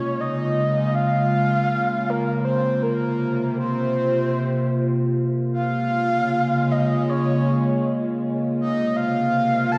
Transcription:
Already playing: C#3 G#3 A#3 F4 C#5
0.21 D#5
0.95 F5
2.10 A#4
2.45 C3 C5
2.82 A#4
3.58 C5
5.52 C#3 F5
5.62 G#3
6.71 D#5
7.09 C#5
8.61 C3 D#5
8.96 F5
9.72 A5

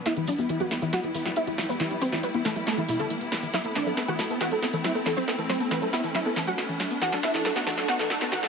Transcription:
Already playing: B3, riser
0.06 G3 B3 E4 E5, snare, closed hi-hat, shaker
0.17 E2 E3 E4, closed hi-hat
0.27 E2 F#3 D4 D5, open hi-hat, shaker
0.38 E2 B3 E4, closed hi-hat, shaker
0.49 E3 E4, closed hi-hat, shaker
0.60 E2 F#3 F#4 F#5, closed hi-hat
0.71 E2 B3 E4, snare, open hi-hat, shaker
0.82 E2 E3 E4, closed hi-hat, shaker
0.93 F#3 F#4 F#5, snare, closed hi-hat, shaker
1.04 E2 B3 E4, closed hi-hat
1.15 E2 E3 E4, open hi-hat, shaker
1.25 E2 F#3 E4, snare, closed hi-hat, shaker
1.36 B3 E4 E5, closed hi-hat, shaker
1.47 E2 E3 E4, closed hi-hat
1.58 E2 F#3 E4, snare, open hi-hat, shaker
1.69 E2 B3 B4, closed hi-hat, shaker
1.80 E3 E4, snare, closed hi-hat, shaker
1.91 E2 F#3 E4, closed hi-hat
2.02 E2 B3 C4 C5, open hi-hat, shaker
2.12 E2 E3 E4, snare, closed hi-hat, shaker
2.23 F#3 B3 B4, closed hi-hat, shaker
2.34 E2 B3 E4, closed hi-hat
2.45 E2 E3 A3 A4, snare, open hi-hat, shaker
2.56 E2 F#3 E4, closed hi-hat, shaker
2.67 A3 B3 A4, snare, closed hi-hat, shaker
2.78 E2 E3 E4, closed hi-hat
2.89 E2 B2 E4, open hi-hat, shaker
2.99 E2 D3 A3 A4, closed hi-hat, shaker
3.10 E3, closed hi-hat, shaker
3.21 E1 B3, closed hi-hat
3.32 E2 B3, snare, open hi-hat, shaker
3.43 E2 E3, closed hi-hat, shaker
3.54 F#3 A3 C4 E4 E5, snare, closed hi-hat, shaker
3.65 A1 B3 A4, closed hi-hat
3.75 A1 E3 D4 D5, snare, open hi-hat, shaker
3.86 A1 F#3 A4, closed hi-hat, shaker
3.97 B3 A4, snare, closed hi-hat, shaker
4.08 A1 E3 F#4 F#5, closed hi-hat
4.19 A1 F#3 A4, snare, open hi-hat, shaker
4.30 A1 B3 A4, closed hi-hat, shaker
4.41 E3 F#4 F#5, snare, closed hi-hat, shaker
4.52 A1 F#3 A4, closed hi-hat
4.62 A1 B3 A4, snare, open hi-hat, shaker
4.73 A1 E3 A4, closed hi-hat, shaker
4.84 F#3 E4 E5, snare, closed hi-hat, shaker
4.95 A1 B3 A4, closed hi-hat
5.06 A1 E3 A4, snare, open hi-hat, shaker
5.16 A1 F#3 C4 C5, closed hi-hat, shaker
5.28 B3 A4, snare, closed hi-hat, shaker
5.38 A1 E3 A4, closed hi-hat
5.49 A1 F#3 C4 C5, snare, open hi-hat, shaker
5.60 A1 B3 A4, closed hi-hat, shaker
5.71 E3 B3 B4, snare, closed hi-hat, shaker
5.82 A1 F#3 A4, closed hi-hat
5.93 A1 B3 E4 E5, snare, open hi-hat, shaker
6.04 A1 E3 A4, closed hi-hat, shaker
6.14 F#3 E4 E5, snare, closed hi-hat, shaker
6.25 A1 B3 A4, closed hi-hat
6.36 A1 E3 A4, snare, open hi-hat, shaker
6.47 A1 F#3 F#4 F#5, closed hi-hat, shaker
6.58 B3, snare, closed hi-hat, shaker
6.69 A1 E3, closed hi-hat
6.80 A1 F#3, snare, open hi-hat, shaker
6.91 A1 B3, closed hi-hat, shaker
7.02 E3 D4 F#4 F#5, snare, closed hi-hat, shaker
7.12 D2 F#3 A4, snare, closed hi-hat
7.23 D2 B3 E4 E5, snare, open hi-hat, shaker
7.34 D2 E3 A4, snare, closed hi-hat, shaker
7.45 F#3 A4, snare, closed hi-hat, shaker
7.56 D2 B3 F#4 F#5, snare, closed hi-hat
7.67 D2 E3 A4, snare, open hi-hat, shaker
7.78 D2 F#3 A4, snare, closed hi-hat, shaker
7.88 B3 F#4 F#5, snare, closed hi-hat, shaker
7.99 D2 E3 A4, snare, closed hi-hat
8.10 D2 F#3 A4, snare, open hi-hat, shaker
8.21 D2 B3 A4, snare, closed hi-hat, shaker
8.32 E3 F#4 F#5, snare, closed hi-hat, shaker
8.43 D2 F#3 A4, snare, closed hi-hat

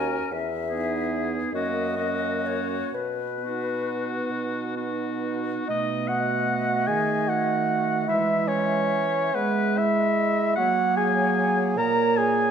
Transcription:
Already playing: D#2 C#4 F#4 A#4 G#5
0.30 E2 E5
0.69 B3 D#4 G#4
1.53 F#2 A#3 C#4 F#4 D#5
1.97 A#3 C#4 F#4
2.46 C#5
2.93 B2 B4
3.39 B3 D#4 F#4
4.30 B2
4.75 B3 D#4 F#4
5.66 B2 A3 D#4 D#5
5.70 D#5
6.08 F#4 F#5
6.87 D#3 G#4 G#5
7.28 F#4 F#5
8.08 E3 G#3 E4 E5
8.47 C#4 C#5
9.34 G#3 B3 B4 E5
9.78 E4 E5
9.98 D#5
10.56 F#3 A#3 F#4 C#5 F#5
10.97 G#4 G#5
11.77 A#2 A#3 A#4 C#5 A#5
12.17 G#4 G#5

